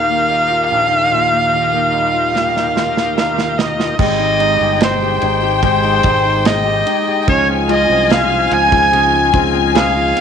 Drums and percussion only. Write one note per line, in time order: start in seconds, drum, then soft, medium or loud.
2.36 snare soft
2.57 snare soft
2.77 snare medium
2.97 snare soft
3.18 snare medium
3.38 snare medium
3.59 snare medium
3.80 snare medium
3.99 kick loud
3.99 crash medium
4.40 ride soft
4.81 snare loud
4.81 ride medium
5.22 ride medium
5.63 kick medium
5.63 ride medium
6.03 kick medium
6.03 ride medium
6.45 snare loud
6.45 ride medium
6.87 ride medium
7.28 kick loud
7.28 ride medium
7.69 ride medium
8.10 snare loud
8.10 ride medium
8.51 ride medium
8.72 kick medium
8.93 ride medium
9.34 kick medium
9.34 ride medium
9.75 snare loud
9.75 ride medium
10.17 ride medium